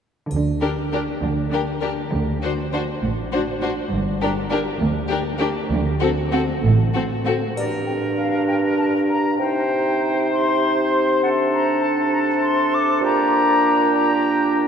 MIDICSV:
0, 0, Header, 1, 11, 480
1, 0, Start_track
1, 0, Key_signature, -2, "minor"
1, 0, Tempo, 599401
1, 247, Time_signature, 6, 3, 24, 8
1, 4564, Tempo, 617284
1, 8404, Tempo, 598802
1, 11642, End_track
2, 0, Start_track
2, 0, Title_t, "Flute"
2, 0, Program_c, 0, 73
2, 6017, Note_on_c, 0, 74, 50
2, 6071, Note_off_c, 0, 74, 0
2, 6245, Note_on_c, 0, 79, 46
2, 6301, Note_off_c, 0, 79, 0
2, 6483, Note_on_c, 0, 77, 48
2, 6717, Note_off_c, 0, 77, 0
2, 6722, Note_on_c, 0, 79, 51
2, 6777, Note_off_c, 0, 79, 0
2, 6962, Note_on_c, 0, 81, 52
2, 7017, Note_off_c, 0, 81, 0
2, 7196, Note_on_c, 0, 82, 57
2, 7431, Note_off_c, 0, 82, 0
2, 7435, Note_on_c, 0, 79, 55
2, 8148, Note_off_c, 0, 79, 0
2, 8157, Note_on_c, 0, 84, 64
2, 8863, Note_off_c, 0, 84, 0
2, 8876, Note_on_c, 0, 78, 53
2, 8931, Note_off_c, 0, 78, 0
2, 9119, Note_on_c, 0, 82, 54
2, 9353, Note_on_c, 0, 81, 44
2, 9365, Note_off_c, 0, 82, 0
2, 9590, Note_off_c, 0, 81, 0
2, 9595, Note_on_c, 0, 82, 59
2, 9649, Note_off_c, 0, 82, 0
2, 9833, Note_on_c, 0, 84, 60
2, 10094, Note_on_c, 0, 86, 63
2, 10106, Note_off_c, 0, 84, 0
2, 10324, Note_off_c, 0, 86, 0
2, 10330, Note_on_c, 0, 82, 67
2, 11025, Note_off_c, 0, 82, 0
2, 11040, Note_on_c, 0, 82, 69
2, 11533, Note_off_c, 0, 82, 0
2, 11642, End_track
3, 0, Start_track
3, 0, Title_t, "Violin section"
3, 0, Program_c, 1, 48
3, 493, Note_on_c, 1, 70, 35
3, 558, Note_off_c, 1, 70, 0
3, 740, Note_on_c, 1, 70, 31
3, 804, Note_off_c, 1, 70, 0
3, 1224, Note_on_c, 1, 70, 34
3, 1288, Note_off_c, 1, 70, 0
3, 1459, Note_on_c, 1, 70, 30
3, 1524, Note_off_c, 1, 70, 0
3, 1946, Note_on_c, 1, 72, 32
3, 2010, Note_off_c, 1, 72, 0
3, 2182, Note_on_c, 1, 72, 39
3, 2246, Note_off_c, 1, 72, 0
3, 2658, Note_on_c, 1, 72, 38
3, 2722, Note_off_c, 1, 72, 0
3, 2901, Note_on_c, 1, 72, 32
3, 2965, Note_off_c, 1, 72, 0
3, 3376, Note_on_c, 1, 70, 41
3, 3440, Note_off_c, 1, 70, 0
3, 3609, Note_on_c, 1, 70, 43
3, 3673, Note_off_c, 1, 70, 0
3, 4088, Note_on_c, 1, 70, 42
3, 4152, Note_off_c, 1, 70, 0
3, 4319, Note_on_c, 1, 70, 39
3, 4383, Note_off_c, 1, 70, 0
3, 4810, Note_on_c, 1, 69, 45
3, 4873, Note_off_c, 1, 69, 0
3, 5050, Note_on_c, 1, 69, 43
3, 5113, Note_off_c, 1, 69, 0
3, 5525, Note_on_c, 1, 69, 40
3, 5588, Note_off_c, 1, 69, 0
3, 5776, Note_on_c, 1, 69, 38
3, 5838, Note_off_c, 1, 69, 0
3, 11642, End_track
4, 0, Start_track
4, 0, Title_t, "Oboe"
4, 0, Program_c, 2, 68
4, 6021, Note_on_c, 2, 70, 38
4, 7414, Note_off_c, 2, 70, 0
4, 7455, Note_on_c, 2, 72, 37
4, 8859, Note_off_c, 2, 72, 0
4, 8884, Note_on_c, 2, 69, 43
4, 10288, Note_off_c, 2, 69, 0
4, 10323, Note_on_c, 2, 67, 46
4, 11640, Note_off_c, 2, 67, 0
4, 11642, End_track
5, 0, Start_track
5, 0, Title_t, "Violin section"
5, 0, Program_c, 3, 48
5, 495, Note_on_c, 3, 67, 31
5, 559, Note_off_c, 3, 67, 0
5, 741, Note_on_c, 3, 67, 31
5, 806, Note_off_c, 3, 67, 0
5, 1222, Note_on_c, 3, 67, 31
5, 1286, Note_off_c, 3, 67, 0
5, 1463, Note_on_c, 3, 67, 29
5, 1527, Note_off_c, 3, 67, 0
5, 1940, Note_on_c, 3, 66, 33
5, 2004, Note_off_c, 3, 66, 0
5, 2193, Note_on_c, 3, 66, 35
5, 2257, Note_off_c, 3, 66, 0
5, 2662, Note_on_c, 3, 66, 37
5, 2726, Note_off_c, 3, 66, 0
5, 2902, Note_on_c, 3, 66, 36
5, 2966, Note_off_c, 3, 66, 0
5, 3373, Note_on_c, 3, 67, 36
5, 3437, Note_off_c, 3, 67, 0
5, 3607, Note_on_c, 3, 67, 40
5, 3671, Note_off_c, 3, 67, 0
5, 4079, Note_on_c, 3, 67, 44
5, 4143, Note_off_c, 3, 67, 0
5, 4320, Note_on_c, 3, 67, 43
5, 4385, Note_off_c, 3, 67, 0
5, 4796, Note_on_c, 3, 66, 42
5, 4858, Note_off_c, 3, 66, 0
5, 5047, Note_on_c, 3, 66, 43
5, 5109, Note_off_c, 3, 66, 0
5, 5527, Note_on_c, 3, 66, 37
5, 5590, Note_off_c, 3, 66, 0
5, 5772, Note_on_c, 3, 66, 35
5, 5834, Note_off_c, 3, 66, 0
5, 11642, End_track
6, 0, Start_track
6, 0, Title_t, "Clarinet"
6, 0, Program_c, 4, 71
6, 6021, Note_on_c, 4, 62, 46
6, 7413, Note_off_c, 4, 62, 0
6, 7446, Note_on_c, 4, 63, 45
6, 8854, Note_off_c, 4, 63, 0
6, 8885, Note_on_c, 4, 62, 45
6, 11642, Note_off_c, 4, 62, 0
6, 11642, End_track
7, 0, Start_track
7, 0, Title_t, "Viola section"
7, 0, Program_c, 5, 48
7, 491, Note_on_c, 5, 62, 30
7, 555, Note_off_c, 5, 62, 0
7, 734, Note_on_c, 5, 62, 31
7, 798, Note_off_c, 5, 62, 0
7, 1216, Note_on_c, 5, 62, 33
7, 1280, Note_off_c, 5, 62, 0
7, 1454, Note_on_c, 5, 62, 32
7, 1518, Note_off_c, 5, 62, 0
7, 1942, Note_on_c, 5, 62, 34
7, 2006, Note_off_c, 5, 62, 0
7, 2184, Note_on_c, 5, 62, 34
7, 2248, Note_off_c, 5, 62, 0
7, 2667, Note_on_c, 5, 62, 37
7, 2731, Note_off_c, 5, 62, 0
7, 2900, Note_on_c, 5, 62, 36
7, 2964, Note_off_c, 5, 62, 0
7, 3375, Note_on_c, 5, 62, 39
7, 3439, Note_off_c, 5, 62, 0
7, 3604, Note_on_c, 5, 62, 45
7, 3668, Note_off_c, 5, 62, 0
7, 4084, Note_on_c, 5, 62, 41
7, 4148, Note_off_c, 5, 62, 0
7, 4320, Note_on_c, 5, 62, 43
7, 4384, Note_off_c, 5, 62, 0
7, 4806, Note_on_c, 5, 60, 43
7, 4868, Note_off_c, 5, 60, 0
7, 5050, Note_on_c, 5, 60, 48
7, 5112, Note_off_c, 5, 60, 0
7, 5529, Note_on_c, 5, 60, 39
7, 5591, Note_off_c, 5, 60, 0
7, 5782, Note_on_c, 5, 60, 36
7, 5845, Note_off_c, 5, 60, 0
7, 11642, End_track
8, 0, Start_track
8, 0, Title_t, "Bassoon"
8, 0, Program_c, 6, 70
8, 6011, Note_on_c, 6, 43, 48
8, 7409, Note_off_c, 6, 43, 0
8, 7436, Note_on_c, 6, 48, 47
8, 10279, Note_off_c, 6, 48, 0
8, 10307, Note_on_c, 6, 46, 51
8, 11642, Note_off_c, 6, 46, 0
8, 11642, End_track
9, 0, Start_track
9, 0, Title_t, "Cello section"
9, 0, Program_c, 7, 48
9, 254, Note_on_c, 7, 50, 39
9, 837, Note_off_c, 7, 50, 0
9, 978, Note_on_c, 7, 50, 42
9, 1558, Note_off_c, 7, 50, 0
9, 1697, Note_on_c, 7, 50, 40
9, 2281, Note_off_c, 7, 50, 0
9, 2418, Note_on_c, 7, 45, 44
9, 2993, Note_off_c, 7, 45, 0
9, 3132, Note_on_c, 7, 43, 53
9, 3704, Note_off_c, 7, 43, 0
9, 3843, Note_on_c, 7, 38, 53
9, 4423, Note_off_c, 7, 38, 0
9, 4559, Note_on_c, 7, 38, 58
9, 5143, Note_off_c, 7, 38, 0
9, 5289, Note_on_c, 7, 45, 54
9, 5883, Note_off_c, 7, 45, 0
9, 11642, End_track
10, 0, Start_track
10, 0, Title_t, "Double bass section"
10, 0, Program_c, 8, 48
10, 257, Note_on_c, 8, 38, 45
10, 838, Note_off_c, 8, 38, 0
10, 977, Note_on_c, 8, 38, 40
10, 1558, Note_off_c, 8, 38, 0
10, 1704, Note_on_c, 8, 38, 45
10, 2285, Note_off_c, 8, 38, 0
10, 2425, Note_on_c, 8, 33, 45
10, 2996, Note_off_c, 8, 33, 0
10, 3132, Note_on_c, 8, 31, 54
10, 3704, Note_off_c, 8, 31, 0
10, 3838, Note_on_c, 8, 38, 55
10, 4421, Note_off_c, 8, 38, 0
10, 4567, Note_on_c, 8, 38, 61
10, 5148, Note_off_c, 8, 38, 0
10, 5284, Note_on_c, 8, 33, 53
10, 5880, Note_off_c, 8, 33, 0
10, 11642, End_track
11, 0, Start_track
11, 0, Title_t, "Drums"
11, 247, Note_on_c, 9, 81, 25
11, 327, Note_off_c, 9, 81, 0
11, 6022, Note_on_c, 9, 81, 29
11, 6100, Note_off_c, 9, 81, 0
11, 11642, End_track
0, 0, End_of_file